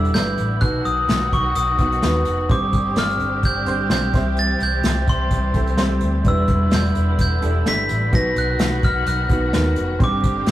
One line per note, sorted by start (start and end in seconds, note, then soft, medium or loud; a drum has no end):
0.00 0.11 E1 medium
0.00 0.60 D3 medium
0.00 0.64 E3 medium
0.00 0.61 G3 medium
0.00 2.46 B3 medium
0.00 0.14 D4 medium
0.00 0.15 E4 medium
0.00 0.61 E4 medium
0.00 0.15 G4 medium
0.00 0.10 A4 medium
0.00 0.15 B4 medium
0.00 0.12 E6 medium
0.05 closed hi-hat soft
0.14 0.34 G1 medium
0.14 0.53 D4 medium
0.14 0.53 E4 medium
0.14 0.53 G4 medium
0.14 0.53 B4 medium
0.14 0.63 G6 medium
0.14 snare medium
0.14 closed hi-hat medium
0.38 0.62 A1 medium
0.38 closed hi-hat medium
0.61 0.81 B1 medium
0.61 1.28 B2 medium
0.61 2.48 D#3 medium
0.61 2.48 F#3 medium
0.61 1.35 B3 medium
0.61 1.35 D#4 medium
0.61 1.35 F#4 medium
0.61 2.48 F#4 medium
0.61 1.36 B4 medium
0.61 0.72 F#6 medium
0.61 kick loud
0.61 closed hi-hat medium
0.85 1.04 B1 medium
0.85 1.34 D#6 medium
0.85 closed hi-hat medium
1.08 1.28 B1 medium
1.08 snare loud
1.08 closed hi-hat medium
1.32 1.52 B1 medium
1.32 1.57 C#6 medium
1.32 kick medium
1.32 closed hi-hat medium
1.55 1.75 B1 medium
1.55 2.00 D#6 medium
1.55 closed hi-hat medium
1.78 1.98 B1 medium
1.78 1.98 B3 medium
1.78 1.98 D#4 medium
1.78 1.98 F#4 medium
1.78 1.98 B4 medium
1.78 kick medium
1.78 closed hi-hat medium
1.92 closed hi-hat soft
2.02 2.22 D#2 medium
2.02 2.40 B3 medium
2.02 2.41 D#4 medium
2.02 2.41 F#4 medium
2.02 2.41 B4 medium
2.02 snare loud
2.02 closed hi-hat medium
2.25 2.45 F1 medium
2.25 closed hi-hat medium
2.48 2.69 G1 loud
2.48 3.16 G2 medium
2.48 4.12 D3 medium
2.48 8.08 G3 medium
2.48 3.23 C4 medium
2.48 4.12 C4 medium
2.48 3.23 D4 medium
2.48 6.21 G4 medium
2.48 3.23 G4 medium
2.48 3.24 C5 medium
2.48 2.99 D6 medium
2.48 kick loud
2.48 closed hi-hat medium
2.73 2.92 G1 medium
2.73 kick medium
2.73 closed hi-hat medium
2.96 3.16 G1 medium
2.96 3.46 F6 medium
2.96 snare loud
2.96 closed hi-hat medium
3.10 closed hi-hat soft
3.20 3.39 G1 medium
3.20 closed hi-hat medium
3.43 3.63 G1 medium
3.43 3.67 G6 medium
3.43 kick medium
3.43 closed hi-hat medium
3.66 3.86 G1 medium
3.66 3.86 C4 medium
3.66 3.86 D4 medium
3.66 3.86 G4 medium
3.66 3.86 C5 medium
3.66 3.79 G6 medium
3.66 closed hi-hat medium
3.89 4.09 B1 medium
3.89 4.12 C4 medium
3.89 4.13 D4 medium
3.89 4.12 G4 medium
3.89 4.13 C5 medium
3.89 4.39 G6 medium
3.89 snare medium
3.89 closed hi-hat medium
4.13 4.52 C2 medium
4.13 4.80 C3 medium
4.13 6.23 E3 medium
4.13 4.89 C4 medium
4.13 6.23 C4 medium
4.13 4.89 E4 medium
4.13 4.89 G4 medium
4.13 4.90 C5 medium
4.13 kick medium
4.13 snare soft
4.13 closed hi-hat medium
4.37 4.62 A6 medium
4.37 closed hi-hat medium
4.60 4.80 C2 medium
4.60 5.10 G6 medium
4.60 closed hi-hat medium
4.83 5.03 C2 medium
4.83 snare loud
4.83 closed hi-hat medium
5.08 5.27 C2 medium
5.08 5.75 C6 medium
5.08 kick medium
5.08 closed hi-hat medium
5.31 5.50 C2 medium
5.31 kick medium
5.31 closed hi-hat medium
5.54 5.74 C2 medium
5.54 5.73 C4 medium
5.54 5.73 E4 medium
5.54 5.73 G4 medium
5.54 5.74 A4 medium
5.54 kick medium
5.54 closed hi-hat medium
5.67 closed hi-hat soft
5.77 5.97 C2 medium
5.77 6.16 C4 medium
5.77 6.16 E4 medium
5.77 6.16 G4 medium
5.77 6.16 C5 medium
5.77 snare loud
5.77 closed hi-hat medium
6.00 6.21 D2 medium
6.00 closed hi-hat medium
6.24 6.44 E1 medium
6.24 8.10 D3 medium
6.24 6.92 E3 medium
6.24 8.10 B3 medium
6.24 6.99 D4 medium
6.24 8.11 E4 medium
6.24 6.99 E4 medium
6.24 6.99 G4 medium
6.24 6.99 B4 medium
6.24 6.75 E6 medium
6.24 kick loud
6.24 closed hi-hat medium
6.48 6.67 E1 medium
6.48 kick medium
6.48 closed hi-hat medium
6.71 6.91 E1 medium
6.71 7.20 G6 medium
6.71 snare loud
6.71 closed hi-hat medium
6.85 closed hi-hat soft
6.95 7.15 E1 medium
6.95 closed hi-hat medium
7.19 7.38 E1 loud
7.19 7.68 G6 medium
7.19 kick medium
7.19 closed hi-hat medium
7.41 7.61 E1 medium
7.41 7.61 D4 medium
7.41 7.61 E4 medium
7.41 7.61 G4 medium
7.41 7.61 A4 medium
7.41 closed hi-hat medium
7.65 7.85 G1 medium
7.65 8.03 D4 medium
7.65 8.03 E4 medium
7.65 8.04 G4 medium
7.65 8.04 A4 medium
7.65 8.15 B6 medium
7.65 snare loud
7.65 closed hi-hat medium
7.89 8.13 A1 medium
7.89 closed hi-hat medium
8.11 8.32 B1 medium
8.11 8.79 B2 medium
8.11 9.98 D#3 medium
8.11 9.98 F#3 medium
8.11 9.98 B3 medium
8.11 8.86 B3 medium
8.11 8.86 D#4 medium
8.11 9.98 F#4 medium
8.11 8.86 F#4 medium
8.11 8.87 B4 medium
8.11 8.38 A#6 medium
8.11 kick loud
8.11 closed hi-hat medium
8.36 8.55 B1 medium
8.36 8.85 F#6 medium
8.36 closed hi-hat medium
8.59 8.79 B1 medium
8.59 snare loud
8.59 closed hi-hat medium
8.83 9.02 B1 medium
8.83 9.08 F6 medium
8.83 kick medium
8.83 closed hi-hat medium
9.06 9.26 B1 medium
9.06 9.51 F#6 medium
9.06 closed hi-hat medium
9.29 9.49 B1 medium
9.29 9.48 B3 medium
9.29 9.49 D#4 medium
9.29 9.49 F#4 medium
9.29 9.49 B4 medium
9.29 kick medium
9.29 closed hi-hat medium
9.53 9.73 D#2 medium
9.53 9.91 B3 medium
9.53 9.91 D#4 medium
9.53 9.91 F#4 medium
9.53 9.91 A#4 medium
9.53 snare loud
9.53 closed hi-hat medium
9.76 9.96 F1 medium
9.76 closed hi-hat medium
9.99 10.19 G1 medium
9.99 10.51 G2 medium
9.99 10.51 D3 medium
9.99 10.51 G3 medium
9.99 10.51 C4 medium
9.99 10.51 D4 medium
9.99 10.51 G4 medium
9.99 10.51 C5 medium
9.99 kick loud
9.99 closed hi-hat medium
10.04 10.50 D6 medium
10.23 10.43 G1 medium
10.23 kick medium
10.23 closed hi-hat medium
10.46 10.51 G1 medium
10.46 snare loud
10.46 closed hi-hat medium